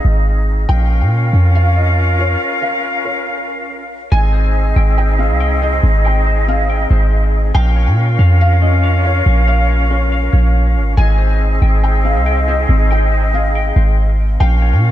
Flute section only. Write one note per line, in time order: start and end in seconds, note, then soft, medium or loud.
0.00 0.66 C4 medium
0.00 0.66 D#4 medium
0.00 0.66 G#4 medium
0.00 0.66 D#5 medium
0.69 3.80 C#4 medium
0.69 3.86 F4 medium
0.69 3.83 A#4 medium
0.69 3.86 F5 medium
4.12 7.51 C4 medium
4.12 7.51 D#4 medium
4.12 7.51 G#4 medium
4.12 7.51 D#5 medium
7.55 10.94 C#4 medium
7.55 10.94 F4 medium
7.55 10.94 A#4 medium
7.55 10.94 F5 medium
10.98 14.18 C4 medium
10.98 14.16 D#4 medium
10.98 14.09 G#4 medium
10.98 14.11 D#5 medium
14.40 14.91 C#4 medium
14.40 14.91 F4 medium
14.40 14.91 A#4 medium
14.40 14.91 F5 medium